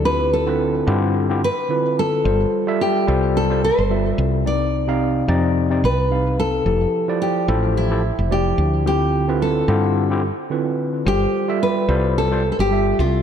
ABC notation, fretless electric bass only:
X:1
M:4/4
L:1/16
Q:"Swing 16ths" 1/4=109
K:Ddor
V:1 name="Fretless electric bass" clef=bass
D,,4- D,, z G,,4 z6 | G,,, z4 z C,,4 z G,,,2 z C,,2- | C,,4- C,, z F,,4 C,,4- C,, z | F,,, z4 z A,,,4 z F,,,2 z D,,2- |
D,,4- D,, z G,,4 z6 | G,,, z4 z C,,4 z G,,,2 z C,,2 |]